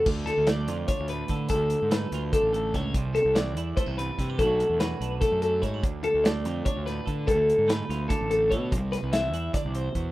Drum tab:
CC |x------|-------|-------|-------|
HH |-xxxxxx|xxxxxxx|xxxxxxx|xxxxxxx|
SD |-ooo--o|--oo--o|-oo---o|--o-o--|
BD |o---o-o|o---o-o|o---o-o|o---o-o|

CC |-------|-------|-------|
HH |xxxxxxx|xxxxxxx|xxxxxxx|
SD |--oo-o-|--ooo--|-oo-o--|
BD |o---o-o|o---o-o|o---o-o|